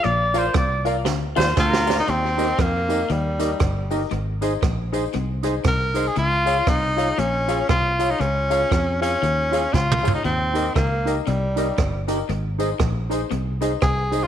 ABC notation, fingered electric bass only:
X:1
M:4/4
L:1/8
Q:"Swing" 1/4=118
K:Ebmix
V:1 name="Fingered electric bass" clef=bass
B,,,2 C,,2 =D,, E,, D,,2 | E,,2 F,,2 E,,2 G,,,2 | A,,,2 B,,,2 C,,2 C,,2 | D,,2 C,,2 B,,,2 C,,2 |
D,,2 F,,2 E,,2 D,,2 | E,,2 D,,2 C,,2 G,,,2 | A,,,2 B,,,2 C,,2 C,,2 |]